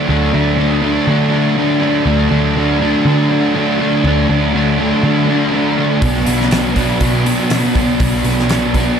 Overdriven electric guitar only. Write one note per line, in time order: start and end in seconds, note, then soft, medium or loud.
0.08 0.57 D3 medium
0.08 0.35 F#3 medium
0.08 0.34 A3 loud
0.08 0.33 D4 loud
0.33 0.59 F#3 medium
0.33 0.59 A3 medium
0.33 0.60 D4 medium
0.58 0.85 D3 medium
0.58 0.84 F#3 medium
0.58 0.83 A3 medium
0.58 0.82 D4 medium
0.83 1.07 D3 medium
0.83 1.08 F#3 medium
0.83 1.08 A3 medium
0.83 1.09 D4 medium
1.07 1.33 D3 medium
1.07 1.33 F#3 medium
1.07 1.32 A3 medium
1.07 1.31 D4 medium
1.32 1.56 D3 medium
1.32 1.56 F#3 medium
1.32 1.57 A3 medium
1.32 1.58 D4 medium
1.56 2.04 D3 medium
1.56 1.82 F#3 medium
1.56 1.81 A3 medium
1.56 1.80 D4 medium
1.80 2.05 F#3 medium
1.80 2.06 A3 medium
1.80 2.07 D4 medium
2.05 2.55 D3 loud
2.05 2.32 F#3 loud
2.05 2.30 A3 loud
2.05 2.29 D4 loud
2.30 2.56 F#3 medium
2.30 2.56 A3 medium
2.30 2.57 D4 medium
2.55 2.82 D3 medium
2.55 2.81 F#3 medium
2.55 2.80 A3 medium
2.55 2.79 D4 medium
2.80 3.04 D3 medium
2.80 3.05 F#3 medium
2.80 3.06 A3 medium
2.80 3.07 D4 medium
3.05 3.30 D3 medium
3.05 3.30 F#3 medium
3.05 3.30 A3 medium
3.05 3.29 D4 medium
3.29 3.54 D3 medium
3.29 3.55 F#3 medium
3.29 3.56 A3 medium
3.29 3.57 D4 medium
3.55 4.03 D3 medium
3.55 3.81 F#3 medium
3.55 3.80 A3 medium
3.55 3.78 D4 medium
3.79 4.04 F#3 medium
3.79 4.06 A3 medium
3.79 4.06 D4 medium
4.04 4.53 D3 medium
4.04 4.31 F#3 medium
4.04 4.30 A3 loud
4.04 4.29 D4 loud
4.29 4.54 F#3 medium
4.29 4.55 A3 medium
4.29 4.56 D4 medium
4.54 4.80 D3 medium
4.54 4.79 F#3 medium
4.54 4.79 A3 medium
4.54 4.78 D4 medium
4.79 5.01 D3 medium
4.79 5.03 F#3 medium
4.79 5.04 A3 medium
4.79 5.04 D4 medium
5.03 5.29 D3 medium
5.03 5.29 F#3 medium
5.03 5.28 A3 medium
5.03 5.27 D4 medium
5.28 5.51 D3 medium
5.28 5.53 F#3 medium
5.28 5.54 A3 medium
5.28 5.54 D4 medium
5.53 6.00 D3 medium
5.53 5.79 F#3 medium
5.53 5.78 A3 medium
5.53 5.77 D4 medium
5.77 6.02 F#3 medium
5.77 6.03 A3 medium
5.77 6.04 D4 medium
6.02 6.50 B2 medium
6.02 6.28 F#3 medium
6.02 6.28 B3 loud
6.02 6.26 D4 medium
6.27 6.51 F#3 medium
6.27 6.52 B3 medium
6.27 6.53 D4 medium
6.51 6.77 B2 medium
6.51 6.77 F#3 medium
6.51 6.76 B3 medium
6.51 6.75 D4 medium
6.76 6.99 B2 medium
6.76 7.00 F#3 medium
6.76 7.01 B3 medium
6.76 7.02 D4 loud
7.01 7.26 B2 medium
7.01 7.25 F#3 medium
7.01 7.25 B3 medium
7.01 7.25 D4 medium
7.25 7.49 B2 medium
7.25 7.49 F#3 medium
7.25 7.51 B3 medium
7.25 7.52 D4 medium
7.50 7.99 B2 medium
7.50 7.76 F#3 medium
7.50 7.76 B3 medium
7.50 7.74 D4 medium
7.75 7.99 F#3 medium
7.75 8.01 B3 medium
7.75 8.01 D4 medium
8.00 8.48 B2 medium
8.00 8.26 F#3 loud
8.00 8.25 B3 loud
8.00 8.24 D4 loud
8.25 8.49 F#3 medium
8.25 8.51 B3 medium
8.25 8.51 D4 medium
8.49 8.75 B2 medium
8.49 8.75 F#3 medium
8.49 8.75 B3 medium
8.49 8.74 D4 medium
8.74 8.98 B2 medium
8.74 8.99 F#3 medium
8.74 9.00 B3 medium
8.74 9.00 D4 medium